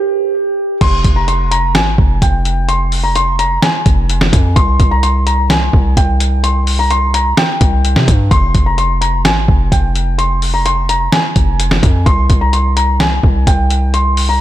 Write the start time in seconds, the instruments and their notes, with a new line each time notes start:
Already playing: felt piano G4
0.81 808-style bass F1, felt piano C6, kick, closed hi-hat, crash
1.04 808-style bass F1, kick, closed hi-hat
1.16 felt piano A#5
1.28 felt piano C6, closed hi-hat
1.51 felt piano A#5, closed hi-hat
1.75 808-style bass G#1, felt piano G#5, snare, closed hi-hat
1.98 808-style bass F1, kick
2.22 808-style bass F1, felt piano G5, kick, closed hi-hat
2.45 closed hi-hat
2.68 felt piano C6, closed hi-hat
2.92 open hi-hat
3.04 felt piano A#5
3.15 felt piano C6, closed hi-hat
3.39 felt piano A#5, closed hi-hat
3.62 felt piano G#5, snare, closed hi-hat
3.86 808-style bass F1, kick, closed hi-hat
4.09 closed hi-hat
4.21 snare
4.33 808-style bass F2, kick, closed hi-hat
4.56 808-style bass C2, felt piano C6, kick, closed hi-hat
4.80 808-style bass C2, kick, closed hi-hat
4.91 felt piano A#5
5.03 felt piano C6, closed hi-hat
5.27 felt piano A#5, closed hi-hat
5.50 felt piano G#5, snare, closed hi-hat
5.73 808-style bass C2, kick
5.97 808-style bass C2, felt piano G5, kick, closed hi-hat
6.20 closed hi-hat
6.44 felt piano C6, closed hi-hat
6.67 open hi-hat
6.79 felt piano A#5
6.91 felt piano C6, closed hi-hat
7.14 felt piano A#5, closed hi-hat
7.37 felt piano G5, snare, closed hi-hat
7.61 808-style bass C2, kick, closed hi-hat
7.85 closed hi-hat
7.96 808-style bass C3, snare
8.08 808-style bass G2, kick, closed hi-hat
8.31 808-style bass F1, felt piano C6, kick, closed hi-hat
8.55 808-style bass F1, kick, closed hi-hat
8.66 felt piano A#5
8.78 felt piano C6, closed hi-hat
9.01 felt piano A#5, closed hi-hat
9.25 808-style bass G#1, felt piano G#5, snare, closed hi-hat
9.48 808-style bass F1, kick
9.72 808-style bass F1, felt piano G5, kick, closed hi-hat
9.95 closed hi-hat
10.18 felt piano C6, closed hi-hat
10.42 open hi-hat
10.54 felt piano A#5
10.66 felt piano C6, closed hi-hat
10.89 felt piano A#5, closed hi-hat
11.12 felt piano G#5, snare, closed hi-hat
11.36 808-style bass F1, kick, closed hi-hat
11.60 closed hi-hat
11.71 snare
11.83 808-style bass F2, kick, closed hi-hat
12.06 808-style bass C2, felt piano C6, kick, closed hi-hat
12.30 808-style bass C2, kick, closed hi-hat
12.41 felt piano A#5
12.53 felt piano C6, closed hi-hat
12.77 felt piano A#5, closed hi-hat
13.00 felt piano G#5, snare, closed hi-hat
13.23 808-style bass C2, kick
13.47 808-style bass C2, felt piano G5, kick, closed hi-hat
13.70 closed hi-hat
13.94 felt piano C6, closed hi-hat
14.17 open hi-hat
14.29 felt piano A#5